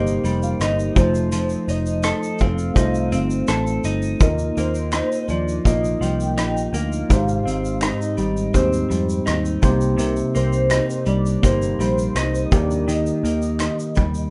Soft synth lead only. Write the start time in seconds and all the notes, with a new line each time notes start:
Already playing: D#5
0.43 F5
0.62 D#5
0.98 C5
1.34 C5
1.70 D#5
2.04 D#5
2.40 F5
4.22 A#4
4.59 C5
5.30 D5
5.67 D#5
6.01 G5
6.75 F5
7.84 D#5
8.56 C5
9.99 A#4
10.36 C5
11.08 D5
11.46 C5
11.81 C5
12.45 D#5
12.53 D5
12.89 D#5